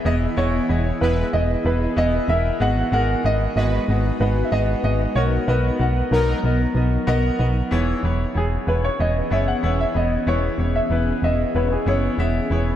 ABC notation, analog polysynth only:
X:1
M:4/4
L:1/8
Q:1/4=94
K:Elyd
V:1 name="Analog polysynth"
z3 [G,EB] z4 | z3 [G,FB] z4 | z3 [F,DA] z4 | z8 |
z8 |]